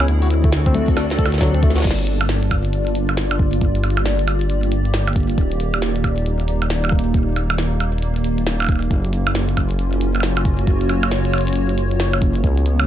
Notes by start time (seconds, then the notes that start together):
Already playing: E4
0.00 C#4, percussion blips
0.08 D2 C4, closed hi-hat
0.22 F#4, open hi-hat
0.27 A4, closed hi-hat
0.34 F#4
0.44 A3 D4, kick, closed hi-hat
0.53 snare, closed hi-hat
0.63 C4 D5, kick, closed hi-hat
0.75 A3, closed hi-hat, high tom
0.88 kick, open hi-hat
0.97 D4, snare, closed hi-hat, percussion blips
1.10 snare, closed hi-hat
1.19 A4, kick, closed hi-hat
1.26 snare, percussion blips
1.32 snare, closed hi-hat
1.38 F#3, kick, snare
1.41 snare, closed hi-hat
1.43 snare
1.55 C4, closed hi-hat
1.63 A3, kick, closed hi-hat
1.70 snare
1.76 F#4, snare, closed hi-hat
1.78 snare
1.80 snare
1.82 snare
1.84 G1 A#3, kick, snare, closed hi-hat, crash
1.87 snare
1.91 snare
1.99 closed hi-hat
2.07 closed hi-hat
2.21 closed hi-hat, percussion blips
2.29 F4, snare, closed hi-hat
2.43 closed hi-hat
2.51 kick, closed hi-hat, percussion blips
2.65 closed hi-hat
2.73 closed hi-hat
2.87 closed hi-hat
2.95 closed hi-hat
3.09 closed hi-hat, percussion blips
3.17 snare, closed hi-hat
3.31 closed hi-hat, percussion blips
3.39 kick
3.45 G4
3.53 closed hi-hat
3.61 kick, closed hi-hat
3.75 closed hi-hat
3.84 closed hi-hat, percussion blips
3.90 closed hi-hat
3.97 percussion blips
4.06 snare, closed hi-hat
4.19 closed hi-hat
4.28 closed hi-hat, percussion blips
4.41 closed hi-hat
4.50 closed hi-hat
4.63 closed hi-hat
4.72 closed hi-hat
4.85 closed hi-hat
4.94 snare, closed hi-hat
5.08 closed hi-hat, percussion blips
5.13 kick, closed hi-hat
5.16 closed hi-hat
5.20 closed hi-hat
5.23 closed hi-hat
5.30 closed hi-hat
5.38 D#1, kick, closed hi-hat
5.52 closed hi-hat
5.60 closed hi-hat
5.74 closed hi-hat, percussion blips
5.82 D#4, snare, closed hi-hat
5.96 closed hi-hat
6.04 kick, closed hi-hat, percussion blips
6.18 closed hi-hat
6.26 closed hi-hat
6.40 closed hi-hat
6.48 closed hi-hat
6.62 closed hi-hat, percussion blips
6.70 snare, closed hi-hat
6.84 closed hi-hat, percussion blips
6.89 kick, percussion blips
6.99 closed hi-hat
7.14 kick, closed hi-hat
7.36 closed hi-hat, percussion blips
7.50 closed hi-hat, percussion blips
7.58 snare, closed hi-hat
7.80 closed hi-hat, percussion blips
7.98 closed hi-hat
8.03 closed hi-hat
8.16 closed hi-hat
8.24 closed hi-hat
8.38 closed hi-hat
8.47 snare, closed hi-hat
8.60 closed hi-hat, percussion blips
8.62 percussion blips
8.64 percussion blips
8.67 kick, closed hi-hat, percussion blips
8.72 percussion blips
8.76 percussion blips
8.79 closed hi-hat, percussion blips
8.91 F#1, kick, closed hi-hat
9.05 closed hi-hat
9.13 closed hi-hat
9.27 F4, closed hi-hat, percussion blips
9.35 C#4, snare, closed hi-hat
9.49 closed hi-hat
9.57 kick, closed hi-hat, percussion blips
9.71 closed hi-hat
9.79 closed hi-hat
9.93 closed hi-hat
10.01 closed hi-hat
10.12 F#4, closed hi-hat, percussion blips
10.20 snare, closed hi-hat, percussion blips
10.37 closed hi-hat, percussion blips
10.45 kick, closed hi-hat
10.51 C#5
10.59 closed hi-hat
10.67 kick, closed hi-hat
10.81 closed hi-hat
10.89 closed hi-hat, percussion blips
11.03 closed hi-hat, percussion blips
11.12 snare, closed hi-hat
11.25 closed hi-hat
11.34 closed hi-hat, percussion blips
11.38 closed hi-hat
11.41 closed hi-hat
11.47 closed hi-hat
11.53 closed hi-hat
11.56 closed hi-hat
11.69 closed hi-hat
11.78 closed hi-hat
11.91 closed hi-hat
12.00 snare, closed hi-hat
12.13 closed hi-hat, percussion blips
12.22 kick, closed hi-hat
12.35 closed hi-hat
12.44 C#2 B3, kick, closed hi-hat
12.58 closed hi-hat
12.66 closed hi-hat
12.80 closed hi-hat, percussion blips